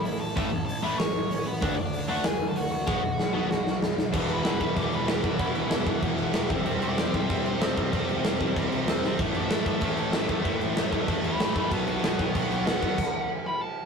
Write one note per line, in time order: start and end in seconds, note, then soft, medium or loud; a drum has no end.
0.03 0.18 A1 medium
0.03 0.19 E4 medium
0.03 0.21 E5 medium
0.03 open hi-hat medium
0.20 0.34 A1 medium
0.20 0.65 A4 medium
0.20 0.65 A5 medium
0.36 0.50 A1 medium
0.36 0.49 A2 medium
0.36 0.49 E3 loud
0.36 0.49 A3 loud
0.36 kick loud
0.36 open hi-hat medium
0.53 0.66 A1 medium
0.66 0.94 A1 loud
0.66 0.83 A4 medium
0.66 0.83 A5 loud
0.66 open hi-hat medium
0.83 0.96 A2 medium
0.83 0.96 E3 medium
0.83 0.97 A3 loud
0.83 0.99 B4 medium
0.83 0.97 B5 medium
0.98 1.13 A1 medium
0.98 1.29 C#5 medium
0.98 1.31 C#6 loud
0.98 snare loud
0.98 open hi-hat medium
1.16 1.28 A1 medium
1.30 1.44 A1 medium
1.30 1.46 C#4 medium
1.30 1.45 C#5 medium
1.30 open hi-hat medium
1.45 1.60 A1 medium
1.45 1.76 B3 medium
1.45 1.77 B4 medium
1.62 1.75 D2 medium
1.62 1.75 D3 medium
1.62 1.75 A3 medium
1.62 1.75 D4 loud
1.62 kick loud
1.62 open hi-hat medium
1.77 1.92 D2 medium
1.77 2.08 D4 medium
1.77 2.10 D5 medium
1.93 2.20 D2 loud
1.93 open hi-hat medium
2.08 2.22 D3 medium
2.08 2.22 A3 loud
2.08 2.22 D4 loud
2.08 2.25 F#4 medium
2.08 2.25 F#5 medium
2.24 2.38 D2 loud
2.24 2.48 G#4 medium
2.24 2.48 G#5 medium
2.24 snare loud
2.24 open hi-hat medium
2.42 2.54 D2 medium
2.48 2.57 A4 medium
2.48 2.57 A5 medium
2.55 2.70 D2 medium
2.55 2.71 F#4 medium
2.55 2.70 F#5 medium
2.55 open hi-hat medium
2.72 2.85 D2 medium
2.72 3.79 F#4 medium
2.72 3.78 F#5 medium
2.87 3.00 B1 medium
2.87 3.00 B2 loud
2.87 3.00 F#3 medium
2.87 3.01 B3 loud
2.87 kick loud
2.87 snare medium
3.04 3.17 B1 medium
3.19 3.45 B1 loud
3.19 snare medium
3.33 3.47 B2 medium
3.33 3.47 F#3 medium
3.33 3.47 B3 loud
3.51 3.64 B1 medium
3.51 snare medium
3.67 3.80 B1 medium
3.67 snare medium
3.82 3.96 B1 loud
3.82 snare loud
3.98 4.12 B1 medium
3.98 snare medium
4.13 4.28 E1 medium
4.13 4.43 E2 loud
4.13 4.43 B2 medium
4.13 4.45 E3 loud
4.13 kick loud
4.13 crash loud
4.13 crash medium
4.29 4.44 E1 medium
4.29 4.76 B4 loud
4.29 crash medium
4.44 4.60 E1 medium
4.44 4.61 E2 medium
4.44 4.60 B2 medium
4.44 4.60 E3 loud
4.44 snare loud
4.44 crash medium
4.60 4.75 E1 medium
4.60 4.75 E2 medium
4.60 4.74 B2 medium
4.60 4.76 E3 medium
4.60 kick medium
4.60 crash medium
4.75 4.91 E1 medium
4.75 5.06 E2 loud
4.75 5.06 B2 loud
4.75 5.07 E3 loud
4.75 4.93 G4 medium
4.75 kick medium
4.75 crash medium
4.93 5.07 E1 medium
4.93 5.09 B4 medium
4.93 crash medium
5.07 5.22 E1 loud
5.07 5.23 E2 medium
5.07 5.22 B2 medium
5.07 5.23 E3 medium
5.07 5.25 G4 loud
5.07 snare loud
5.07 crash medium
5.23 5.38 B1 medium
5.23 5.38 E2 medium
5.23 5.38 B2 medium
5.23 5.39 E3 medium
5.23 5.86 E4 medium
5.23 kick medium
5.23 crash medium
5.38 5.54 E1 medium
5.38 5.70 E2 medium
5.38 5.69 B2 loud
5.38 5.71 E3 loud
5.38 kick loud
5.38 crash medium
5.55 5.70 E1 medium
5.55 crash medium
5.70 5.86 E1 medium
5.70 5.87 E2 medium
5.70 5.85 B2 medium
5.70 5.86 E3 loud
5.70 snare loud
5.70 crash medium
5.86 6.01 E1 medium
5.86 6.01 E2 medium
5.86 6.01 B2 medium
5.86 6.03 E3 medium
5.86 kick medium
5.86 crash medium
6.02 6.17 E1 medium
6.02 6.33 E2 loud
6.02 6.33 B2 loud
6.02 6.34 E3 loud
6.02 kick medium
6.02 crash medium
6.18 6.33 B1 medium
6.18 crash medium
6.33 6.49 E1 medium
6.33 9.83 E2 medium
6.33 6.49 B2 medium
6.33 6.50 E3 medium
6.33 snare loud
6.33 crash medium
6.50 6.64 E1 medium
6.50 6.66 C3 loud
6.50 6.66 G3 loud
6.50 6.65 C4 loud
6.50 kick loud
6.50 crash medium
6.66 6.81 E1 medium
6.66 6.98 C3 medium
6.66 6.98 G3 loud
6.66 6.98 C4 loud
6.66 crash medium
6.82 6.97 E1 medium
6.82 7.13 D5 loud
6.82 crash medium
6.98 7.13 E1 medium
6.98 7.13 C3 medium
6.98 7.14 G3 medium
6.98 7.14 C4 loud
6.98 snare loud
6.98 crash medium
7.14 7.28 E1 medium
7.14 7.29 C3 medium
7.14 7.29 G3 medium
7.14 7.28 C4 medium
7.14 7.29 E5 medium
7.14 kick medium
7.14 crash medium
7.29 7.44 E1 loud
7.29 7.60 C3 medium
7.29 7.61 G3 loud
7.29 7.59 C4 loud
7.29 7.46 E5 loud
7.29 kick loud
7.29 crash medium
7.46 7.60 E1 medium
7.46 8.07 C5 loud
7.46 crash medium
7.61 7.76 E1 loud
7.61 7.75 C3 medium
7.61 7.76 G3 medium
7.61 7.76 C4 medium
7.61 snare loud
7.61 crash medium
7.76 7.91 B1 medium
7.76 7.92 C3 medium
7.76 7.92 G3 medium
7.76 7.91 C4 medium
7.76 kick medium
7.76 crash medium
7.92 8.07 E1 medium
7.92 8.24 C3 medium
7.92 8.24 G3 medium
7.92 8.23 C4 loud
7.92 kick medium
7.92 crash medium
8.09 8.23 E1 medium
8.09 crash medium
8.24 8.38 E1 medium
8.24 8.39 C3 medium
8.24 8.39 G3 medium
8.24 8.40 C4 loud
8.24 snare loud
8.24 crash medium
8.40 8.54 E1 medium
8.40 8.55 C3 medium
8.40 8.55 G3 medium
8.40 8.55 C4 loud
8.40 kick medium
8.40 crash medium
8.56 8.70 E1 medium
8.56 8.87 C3 medium
8.56 8.87 G3 medium
8.56 8.86 C4 loud
8.56 kick loud
8.56 crash medium
8.72 8.86 B1 medium
8.72 crash medium
8.87 9.02 E1 medium
8.87 9.03 C3 medium
8.87 9.04 G3 medium
8.87 9.04 C4 medium
8.87 snare loud
8.87 crash medium
9.04 9.18 G#1 medium
9.04 9.19 C3 medium
9.04 9.19 G3 medium
9.04 9.19 C4 medium
9.04 snare medium
9.19 9.33 A1 medium
9.19 9.51 A2 medium
9.19 9.50 E3 medium
9.19 9.52 A3 loud
9.19 kick loud
9.19 crash medium
9.35 9.49 A1 medium
9.35 9.66 E5 medium
9.35 crash medium
9.50 9.65 A1 medium
9.50 9.67 A2 medium
9.50 9.67 E3 medium
9.50 9.66 A3 loud
9.50 snare loud
9.50 crash medium
9.66 9.80 A1 medium
9.66 9.80 A2 medium
9.66 9.81 E3 medium
9.66 9.81 A3 medium
9.66 9.82 E5 medium
9.66 kick medium
9.66 crash medium
9.81 9.96 A1 medium
9.81 10.13 A2 loud
9.81 10.13 E3 loud
9.81 10.13 A3 loud
9.81 9.98 E5 loud
9.81 kick loud
9.81 crash medium
9.97 10.12 A1 medium
9.97 10.60 A4 loud
9.97 crash medium
10.13 10.28 A1 loud
10.13 10.29 A2 medium
10.13 10.28 E3 medium
10.13 10.28 A3 medium
10.13 snare loud
10.13 crash medium
10.29 10.43 E2 medium
10.29 10.42 A2 medium
10.29 10.43 E3 medium
10.29 10.43 A3 medium
10.29 kick medium
10.29 crash medium
10.44 10.59 A1 medium
10.44 10.75 A2 loud
10.44 10.76 E3 medium
10.44 10.76 A3 loud
10.44 kick medium
10.44 crash medium
10.61 10.75 A1 medium
10.61 crash medium
10.76 10.91 A1 medium
10.76 10.91 A2 medium
10.76 10.91 E3 loud
10.76 10.90 A3 medium
10.76 snare loud
10.76 crash medium
10.91 11.07 A1 medium
10.91 11.06 A2 medium
10.91 11.07 E3 medium
10.91 11.07 A3 medium
10.91 kick medium
10.91 crash medium
11.07 11.22 A1 medium
11.07 11.38 A2 loud
11.07 11.38 E3 loud
11.07 11.39 A3 loud
11.07 kick loud
11.07 crash medium
11.24 11.38 E2 medium
11.24 11.40 G5 loud
11.24 11.41 B5 loud
11.24 crash medium
11.39 11.54 A1 loud
11.39 11.55 A2 medium
11.39 11.55 E3 medium
11.39 11.54 A3 medium
11.39 11.55 G5 medium
11.39 11.57 B5 loud
11.39 snare loud
11.39 crash medium
11.55 11.70 A1 medium
11.55 11.71 A2 medium
11.55 11.71 E3 medium
11.55 11.71 A3 medium
11.55 11.71 G5 medium
11.55 11.72 B5 medium
11.55 kick medium
11.55 crash medium
11.71 11.86 B1 medium
11.71 12.02 B2 medium
11.71 12.03 F#3 loud
11.71 12.03 B3 loud
11.71 11.86 F#5 medium
11.71 11.87 A5 loud
11.71 kick medium
11.71 crash medium
11.87 12.01 B1 medium
11.87 12.02 F#5 medium
11.87 12.02 A5 loud
11.87 crash medium
12.03 12.17 B1 loud
12.03 12.18 B2 medium
12.03 12.18 F#3 medium
12.03 12.18 B3 loud
12.03 12.18 F#5 medium
12.03 12.19 A5 medium
12.03 snare loud
12.03 crash medium
12.19 12.33 B1 medium
12.19 12.33 B2 medium
12.19 12.34 F#3 medium
12.19 12.34 B3 medium
12.19 12.34 D#5 medium
12.19 12.35 G5 medium
12.19 kick medium
12.19 crash medium
12.34 12.49 B1 loud
12.34 12.65 B2 loud
12.34 12.65 F#3 loud
12.34 12.65 B3 loud
12.34 12.50 D#5 medium
12.34 12.51 G5 loud
12.34 kick loud
12.34 crash medium
12.51 12.65 B1 medium
12.51 12.66 D#5 medium
12.51 12.67 G5 loud
12.51 crash medium
12.66 12.80 B1 medium
12.66 12.81 B2 medium
12.66 12.80 F#3 medium
12.66 12.80 B3 medium
12.66 13.28 F#5 loud
12.66 snare loud
12.66 crash medium
12.81 12.96 F#2 medium
12.81 12.97 B2 medium
12.81 12.97 F#3 medium
12.81 12.97 B3 medium
12.81 kick medium
12.81 crash medium
12.98 kick loud
12.98 crash loud
13.47 13.61 B5 loud
13.61 13.85 A5 loud